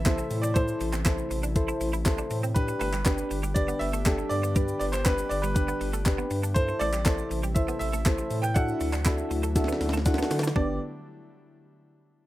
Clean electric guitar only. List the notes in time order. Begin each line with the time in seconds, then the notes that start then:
0.06 B3
0.18 muted clean electric guitar stroke
0.43 C4
0.56 A3
0.81 muted clean electric guitar stroke
0.93 C4
1.06 E4
1.31 muted clean electric guitar stroke
1.43 D4
1.68 E4
1.81 muted clean electric guitar stroke
1.93 E4
2.18 D4
2.31 muted clean electric guitar stroke
2.43 C4
2.68 muted clean electric guitar stroke
2.81 A3
2.93 G3
3.06 B3
3.31 muted clean electric guitar stroke
3.43 G3
3.68 B3
3.81 muted clean electric guitar stroke
3.93 A3
4.06 A3
4.18 muted clean electric guitar stroke
4.43 B3
4.56 G3
4.81 muted clean electric guitar stroke
4.93 G3
5.06 B3
5.31 muted clean electric guitar stroke
5.43 G3
5.68 B3
5.81 muted clean electric guitar stroke
5.93 A3
6.18 B3
6.31 muted clean electric guitar stroke
6.43 D4
6.68 muted clean electric guitar stroke
6.81 A3
6.93 G3
7.06 A3
7.31 muted clean electric guitar stroke
7.43 G3
7.68 B3
7.81 muted clean electric guitar stroke
7.93 A3
8.06 A3
8.18 muted clean electric guitar stroke
8.43 B3
8.56 D4
8.81 muted clean electric guitar stroke
8.93 D4
9.06 E4
9.31 muted clean electric guitar stroke
9.43 A3
9.68 B3
9.81 muted clean electric guitar stroke
9.93 A3
10.18 B3
10.31 muted clean electric guitar stroke
10.43 D4
10.56 D4